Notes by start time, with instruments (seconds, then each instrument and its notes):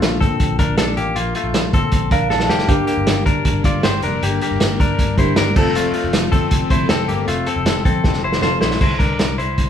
Already playing: clean electric guitar A3 F4, reed electric piano A#3 D4 F4
0.01 picked electric bass A#1, snare, closed hi-hat
0.21 picked electric bass A#2, clean electric guitar C4 A4, kick, closed hi-hat
0.40 picked electric bass A#1, kick, closed hi-hat
0.59 picked electric bass A#1, clean electric guitar D4 A#4, kick, closed hi-hat
0.78 picked electric bass A#1, clean electric guitar D4 A4, snare, closed hi-hat
0.97 picked electric bass A1, clean electric guitar A#3 G4, closed hi-hat
1.16 picked electric bass A#1, clean electric guitar A#3 F4, closed hi-hat
1.35 clean electric guitar A3 F4, closed hi-hat
1.44 picked electric bass A#1
1.53 picked electric bass A#1, snare, closed hi-hat
1.73 picked electric bass A#2, clean electric guitar C4 A4, kick, closed hi-hat
1.92 picked electric bass A#1, kick, closed hi-hat
2.11 picked electric bass A#1, clean electric guitar D4 A#4, reed electric piano F5, kick, closed hi-hat
2.30 picked electric bass A#1, clean electric guitar D4 A4, reed electric piano A5, snare
2.40 snare
2.49 picked electric bass F1, clean electric guitar A#3 G4, snare
2.59 snare
2.68 picked electric bass G1, string machine D3 G3 A#3, clean electric guitar A#3 G4, reed electric piano D4 G4 A#4, kick, closed hi-hat
2.87 clean electric guitar A#3 G4, closed hi-hat
2.97 picked electric bass G1
3.07 picked electric bass G1, snare, closed hi-hat
3.26 picked electric bass G2, clean electric guitar D4 A#4, kick, closed hi-hat
3.45 picked electric bass G1, kick, closed hi-hat
3.64 picked electric bass G1, clean electric guitar F4 D5, kick, closed hi-hat
3.83 picked electric bass G1, clean electric guitar G4 C5, snare, closed hi-hat
4.02 picked electric bass F1, clean electric guitar D4 A#4, closed hi-hat
4.23 picked electric bass G1, clean electric guitar A#3 G4, closed hi-hat
4.41 clean electric guitar A#3 G4, closed hi-hat
4.51 picked electric bass G1
4.60 picked electric bass G1, snare, closed hi-hat
4.80 picked electric bass G2, clean electric guitar D4 A#4, kick, closed hi-hat
4.99 picked electric bass G1, kick, closed hi-hat
5.17 picked electric bass G1, reed electric piano D4 G4 A#4, clean electric guitar E4 C5, kick, closed hi-hat
5.36 picked electric bass G1, clean electric guitar D4 A#4, snare, closed hi-hat
5.55 picked electric bass F1, string machine C3 F3 A3, reed electric piano C4 F4 A4, clean electric guitar C4 A4, kick, crash
5.75 clean electric guitar A3 F4, closed hi-hat
5.94 clean electric guitar A3 F4, closed hi-hat
6.04 picked electric bass F1
6.13 picked electric bass F1, snare, closed hi-hat
6.32 picked electric bass F2, clean electric guitar C4 A4, kick, closed hi-hat
6.51 picked electric bass F1, kick, closed hi-hat
6.70 picked electric bass F1, clean electric guitar E4 C5, kick, closed hi-hat
6.89 picked electric bass F1, clean electric guitar C4 A4, snare, closed hi-hat
7.08 picked electric bass G1, clean electric guitar A#3 G4, closed hi-hat
7.28 picked electric bass F1, clean electric guitar A3 F4, closed hi-hat
7.46 clean electric guitar C4 A4, closed hi-hat
7.56 picked electric bass F1
7.65 picked electric bass F1, snare, closed hi-hat
7.85 picked electric bass F2, clean electric guitar C4 A4, kick, closed hi-hat
8.04 picked electric bass F1, kick, snare
8.13 snare
8.23 picked electric bass F1, clean electric guitar E4 C5
8.32 snare
8.42 picked electric bass F1, reed electric piano C4 F4 A4, clean electric guitar F4 C5, snare
8.61 picked electric bass A#1, clean electric guitar E4 C5, snare
8.71 snare
8.81 picked electric bass C2, clean electric guitar E4 C5, kick, crash
8.99 picked electric bass C2, clean electric guitar D4 A#4, kick, closed hi-hat
9.19 picked electric bass C2, snare, closed hi-hat
9.38 picked electric bass C2, clean electric guitar E4 C5, closed hi-hat
9.58 picked electric bass C2, kick, closed hi-hat